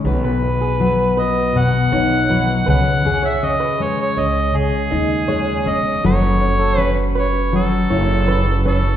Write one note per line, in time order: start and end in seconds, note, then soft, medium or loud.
0.00 0.13 G#3 medium
0.00 0.13 C#4 medium
0.00 1.92 D#4 medium
0.05 1.88 B1 medium
0.05 1.54 B2 medium
0.05 2.75 B4 medium
0.05 1.21 B4 loud
0.24 0.42 B4 medium
0.42 2.74 B3 medium
0.61 0.79 G#4 medium
0.80 2.29 F#3 medium
1.17 1.70 B4 medium
1.17 1.59 D#5 loud
1.55 2.67 B2 medium
1.55 2.68 F#5 loud
1.92 2.63 B1 loud
1.92 3.08 D#4 medium
1.92 2.10 C#5 medium
2.29 2.75 F#3 medium
2.29 2.47 B4 medium
2.66 3.38 C#2 medium
2.66 3.04 C#3 medium
2.66 2.84 B4 medium
2.66 3.28 F#5 loud
3.05 4.53 C#3 medium
3.05 6.04 G#4 medium
3.22 3.40 C#5 medium
3.22 3.47 E5 loud
3.43 5.65 C#4 medium
3.43 3.84 D#5 loud
3.60 3.78 B4 medium
3.80 5.27 G#3 medium
3.80 4.00 C#5 medium
4.01 4.21 C#5 medium
4.17 4.69 C#2 medium
4.17 4.69 C#5 medium
4.17 4.58 D#5 medium
4.54 6.11 C#3 medium
4.54 5.70 G#4 loud
4.91 5.68 D#2 medium
4.91 6.11 D#4 medium
4.91 5.09 D#5 medium
5.28 6.03 G#3 medium
5.28 5.81 C#5 medium
5.66 6.01 E1 medium
5.66 6.41 C#4 medium
5.66 6.05 D#5 loud
6.04 7.87 F#1 medium
6.04 7.51 F#3 medium
6.04 8.97 A4 medium
6.04 6.80 C#5 loud
6.22 6.40 B4 medium
6.41 6.77 C#4 medium
6.59 6.77 A4 medium
6.78 8.28 C#4 medium
6.78 7.02 B4 loud
7.15 7.68 B4 medium
7.15 7.52 C#5 medium
7.53 8.97 F#3 medium
7.53 8.63 A4 loud
7.90 8.97 F#1 loud
7.90 8.97 E4 medium
7.90 8.08 C#5 medium
8.28 8.65 C#4 medium
8.28 8.45 B4 medium
8.65 8.97 C#4 medium
8.65 8.97 A4 medium
8.65 8.83 B4 medium